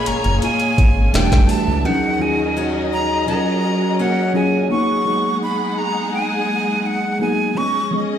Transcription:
0.00 1.21 A#2 medium
0.00 1.15 F3 medium
0.00 0.41 G#3 medium
0.00 1.11 A#3 medium
0.00 1.16 A#3 medium
0.00 0.42 C#4 medium
0.00 1.15 C#4 medium
0.00 0.42 F4 medium
0.00 1.11 G#4 medium
0.00 1.16 G#4 medium
0.00 1.11 C#5 medium
0.00 1.11 G#5 medium
0.06 0.14 F#1 soft
0.06 0.43 A#5 medium
0.06 closed hi-hat medium
0.24 0.40 F#1 medium
0.24 closed hi-hat soft
0.42 1.21 G#3 medium
0.42 1.21 C#4 medium
0.42 1.21 F4 medium
0.42 1.10 G#5 loud
0.42 closed hi-hat medium
0.60 closed hi-hat soft
0.78 1.09 G#1 medium
0.78 kick loud
0.78 closed hi-hat soft
1.12 1.29 E1 loud
1.12 1.84 E3 medium
1.12 1.85 E3 medium
1.12 1.46 G3 medium
1.12 1.46 A3 medium
1.12 1.84 B3 medium
1.12 1.46 D4 medium
1.12 1.47 G4 medium
1.12 1.84 A4 medium
1.12 1.84 D5 medium
1.12 1.84 E5 medium
1.12 1.52 G5 medium
1.12 1.84 A5 medium
1.12 snare loud
1.12 closed hi-hat medium
1.32 1.47 F#1 medium
1.32 kick medium
1.32 snare medium
1.32 closed hi-hat soft
1.48 1.82 A3 medium
1.48 1.82 D4 medium
1.48 1.81 F#4 medium
1.48 1.83 G4 medium
1.48 1.87 A5 medium
1.48 open hi-hat medium
1.68 1.83 C#2 medium
1.84 2.17 D#2 medium
1.84 3.28 D#3 medium
1.84 3.26 D#3 medium
1.84 2.18 F3 medium
1.84 2.17 F#3 medium
1.84 2.18 C#4 medium
1.84 3.26 C#4 medium
1.84 3.26 D#4 medium
1.84 4.68 G#4 medium
1.84 2.18 G#4 medium
1.84 4.68 D#5 medium
1.84 2.23 F#5 medium
2.19 3.27 D#2 medium
2.19 3.25 F#3 medium
2.19 3.26 C#4 medium
2.19 3.27 F4 medium
2.19 3.28 G#4 medium
2.19 2.66 G#5 medium
2.57 3.35 G#3 medium
2.57 3.35 C#4 medium
2.57 5.28 F#4 medium
2.93 3.26 A#5 medium
3.26 4.25 F#3 medium
3.26 5.28 F#3 medium
3.26 4.69 F#3 medium
3.26 4.26 C#4 medium
3.26 4.69 C#4 medium
3.26 4.26 F4 medium
3.26 3.35 A4 medium
3.26 4.69 A#4 medium
3.26 3.96 A#5 medium
3.36 4.30 A#4 medium
3.99 5.28 A#3 medium
3.99 4.78 C#4 medium
3.99 4.33 F#5 medium
4.34 4.67 F#3 medium
4.34 4.67 C#4 medium
4.34 4.68 F4 medium
4.34 4.68 G#4 loud
4.34 4.69 G#5 medium
4.69 5.03 F#3 medium
4.69 7.54 G#3 medium
4.69 5.03 A#3 medium
4.69 5.03 B3 medium
4.69 7.54 D#4 medium
4.69 5.04 D#4 medium
4.69 7.54 G#4 medium
4.69 5.04 G#4 medium
4.69 7.54 F#5 medium
4.69 5.38 C#6 loud
5.05 6.36 F#3 medium
5.05 6.37 A#3 medium
5.05 6.37 B3 medium
5.05 6.37 D#4 medium
5.05 6.38 G#4 medium
5.43 5.80 B5 loud
5.78 6.14 A#5 medium
6.14 6.88 G#5 loud
6.86 7.21 F#5 medium
7.19 7.53 F#3 medium
7.19 7.53 A#3 medium
7.19 7.53 B3 medium
7.19 7.54 D#4 medium
7.19 7.54 G#4 medium
7.19 7.59 G#5 medium
7.55 7.88 F3 medium
7.55 7.89 G#3 medium
7.55 7.89 B3 medium
7.55 8.18 C#4 medium
7.55 7.89 C#4 medium
7.55 8.18 G#4 medium
7.55 7.90 G#4 medium
7.55 8.18 D#5 medium
7.55 8.01 C#6 loud
7.91 8.18 F3 medium
7.91 8.18 G#3 medium
7.91 8.18 B3 medium
7.91 8.18 C#4 medium
7.91 8.18 G#4 medium

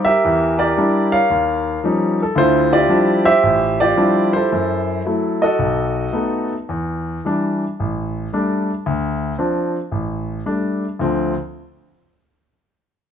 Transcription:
0.00 0.20 C5 medium
0.05 0.57 G4 medium
0.05 0.58 A#4 medium
0.05 0.60 E5 loud
0.25 0.71 E2 medium
0.25 0.71 E3 medium
0.59 1.26 G4 medium
0.59 1.12 A#4 medium
0.59 1.14 D5 medium
0.77 1.15 G3 medium
0.77 1.15 D4 soft
0.77 1.15 E4 medium
1.12 2.15 A#4 medium
1.12 2.15 C#5 medium
1.12 1.79 F5 loud
1.30 1.76 D#2 medium
1.84 2.21 F3 medium
1.84 2.21 G3 medium
1.84 2.21 C#4 soft
1.84 2.21 D#4 soft
2.22 2.39 A4 medium
2.36 2.82 D2 medium
2.36 2.82 D3 medium
2.36 2.89 E4 medium
2.36 2.72 F4 medium
2.36 2.74 C5 medium
2.73 3.75 F4 medium
2.73 3.24 G4 medium
2.73 3.28 D5 loud
2.89 3.27 F3 medium
2.89 3.27 G3 medium
2.89 3.27 C4 soft
2.89 3.27 D4 soft
2.89 3.27 E4 medium
3.25 3.80 G4 medium
3.25 4.29 C5 medium
3.25 3.81 E5 loud
3.43 3.90 A1 medium
3.80 4.48 F4 medium
3.80 4.48 G4 medium
3.80 4.30 D5 loud
3.97 4.34 F3 soft
3.97 4.35 G3 soft
3.97 4.35 C4 soft
3.97 4.35 D4 soft
3.97 4.35 E4 medium
4.33 5.05 E4 soft
4.33 5.38 A4 soft
4.33 5.01 C5 medium
4.52 4.98 F#2 medium
5.06 5.43 F#3 soft
5.06 5.43 A3 soft
5.06 5.43 E4 soft
5.42 6.49 F#4 medium
5.42 6.48 A4 medium
5.42 6.48 D#5 medium
5.59 6.07 B1 medium
6.13 6.53 A3 soft
6.13 6.52 B3 soft
6.13 6.53 D#4 soft
6.69 7.17 E2 medium
7.25 7.62 E3 soft
7.25 7.62 G3 soft
7.25 7.63 D4 medium
7.80 8.25 A1 medium
8.33 8.69 G3 soft
8.33 8.69 A3 soft
8.33 8.69 D4 medium
8.86 9.31 D2 medium
9.39 9.76 F3 soft
9.39 9.75 C4 soft
9.39 9.76 D4 soft
9.92 10.38 A1 medium
10.46 10.83 G3 soft
10.46 10.83 A3 soft
10.46 10.84 D4 medium
10.99 11.32 D2 medium
10.99 11.33 D3 soft
10.99 11.33 F3 soft
10.99 11.33 C4 medium

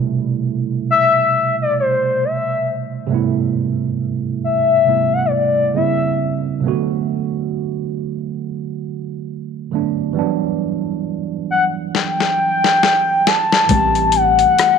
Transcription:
0.00 3.07 B2 medium
0.00 3.04 C3 medium
0.00 3.05 G3 medium
0.00 3.06 A3 medium
0.00 3.08 E4 medium
0.91 1.56 E5 loud
1.61 1.78 D5 medium
1.80 2.26 C5 medium
2.24 2.93 E5 medium
3.07 4.81 C3 medium
3.07 4.82 G3 medium
3.07 4.83 A3 medium
3.12 4.84 B3 medium
3.12 4.85 E4 medium
4.44 5.14 E5 medium
4.85 5.74 C3 soft
4.85 5.73 G3 soft
4.85 5.75 A3 soft
4.85 5.76 B3 soft
4.85 5.76 E4 soft
5.13 5.27 F#5 loud
5.25 5.34 C#5 medium
5.32 5.75 D5 medium
5.74 6.63 C#3 medium
5.74 6.63 G3 soft
5.74 6.64 A#3 medium
5.74 6.64 C4 medium
5.74 6.65 E4 medium
5.74 6.41 E5 medium
6.60 6.69 C3 medium
6.60 9.67 F#3 medium
6.60 9.68 A3 medium
6.66 9.70 D3 medium
6.66 9.69 B3 medium
6.66 9.70 F#4 medium
9.71 10.16 D3 medium
9.71 10.16 F#3 soft
9.71 10.17 A3 soft
9.71 10.16 B3 soft
9.71 10.18 D4 medium
10.13 13.64 E3 medium
10.13 13.64 G3 medium
10.13 13.65 B3 medium
10.19 13.67 F#3 medium
10.19 13.66 D4 medium
11.51 11.65 F#5 loud
11.94 13.28 G5 loud
11.94 snare soft
12.20 snare soft
12.64 snare medium
12.83 snare medium
13.26 14.14 A5 loud
13.26 snare medium
13.52 snare medium
13.67 14.43 A1 medium
13.67 14.79 E3 medium
13.67 14.79 G3 medium
13.67 14.79 A3 medium
13.67 kick medium
13.67 closed hi-hat medium
13.73 14.79 C4 soft
13.73 14.79 G4 medium
13.95 closed hi-hat soft
14.12 14.79 F#5 loud
14.12 closed hi-hat medium
14.39 closed hi-hat soft
14.59 cross-stick loud
14.59 closed hi-hat medium

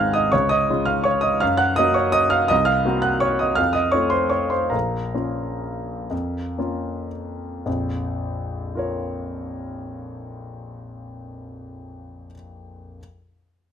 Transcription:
0.00 0.35 G#1 soft
0.00 0.29 G#3 soft
0.00 0.29 C4 soft
0.00 0.29 D#4 soft
0.00 0.13 F5 medium
0.00 0.35 F#5 soft
0.00 0.35 G#5 soft
0.00 0.35 A#5 medium
0.00 0.14 F6 medium
0.00 0.35 F#6 medium
0.00 0.35 G#6 medium
0.00 0.35 A#6 medium
0.14 0.31 D#5 medium
0.14 0.32 D#6 medium
0.32 0.68 C#2 medium
0.32 0.49 C#5 medium
0.32 0.50 C#6 medium
0.49 0.85 D#5 medium
0.49 0.87 D#6 medium
0.70 1.38 G#3 soft
0.70 1.39 C#4 soft
0.70 1.39 F4 soft
0.86 1.04 F5 medium
0.86 1.05 F6 medium
1.04 1.23 C#5 medium
1.04 1.23 C#6 medium
1.21 1.40 D#5 medium
1.21 1.40 D#6 medium
1.40 1.77 F#2 medium
1.40 1.58 F5 medium
1.40 1.59 F6 medium
1.57 1.75 F#5 medium
1.57 1.76 F#6 medium
1.76 2.47 A#3 soft
1.76 2.47 C#4 soft
1.76 2.48 F#4 soft
1.76 1.95 D#5 medium
1.76 1.95 D#6 medium
1.94 2.13 C#5 medium
1.94 2.14 C#6 medium
2.12 2.31 D#5 medium
2.12 2.32 D#6 loud
2.30 2.48 F5 medium
2.30 2.49 F6 medium
2.48 2.85 C2 medium
2.48 2.66 D#5 medium
2.48 2.67 D#6 medium
2.65 3.01 F5 medium
2.65 3.03 F6 medium
2.85 3.54 A#3 soft
2.85 3.54 C4 soft
2.85 3.55 F#4 soft
3.02 3.21 F#5 medium
3.02 3.22 F#6 medium
3.20 3.39 C#5 medium
3.20 3.40 C#6 medium
3.39 3.57 D#5 soft
3.39 3.58 D#6 medium
3.55 3.92 F2 medium
3.55 3.73 F5 medium
3.55 3.74 F6 medium
3.73 3.92 D#5 medium
3.73 3.92 D#6 medium
3.92 4.69 A3 soft
3.92 4.69 C4 soft
3.92 4.70 F4 soft
3.92 4.10 C#5 medium
3.92 4.11 C#6 medium
4.10 4.30 C5 medium
4.10 4.31 C6 medium
4.29 4.50 C#5 medium
4.29 4.51 C#6 medium
4.50 4.71 C5 soft
4.50 4.72 C6 medium
4.70 5.15 A#1 soft
4.70 7.06 A#4 soft
4.70 7.06 F5 soft
4.70 7.10 A#5 soft
5.14 6.06 A#3 soft
5.14 6.06 C#4 soft
5.14 6.07 F4 soft
6.10 6.57 F2 soft
6.58 7.62 A#3 soft
6.58 7.62 C#4 soft
6.58 7.62 F4 soft
7.66 12.26 A#1 soft
7.66 12.26 F2 soft
8.75 12.32 F4 soft
8.75 12.33 A#4 soft
8.75 12.33 C#5 soft

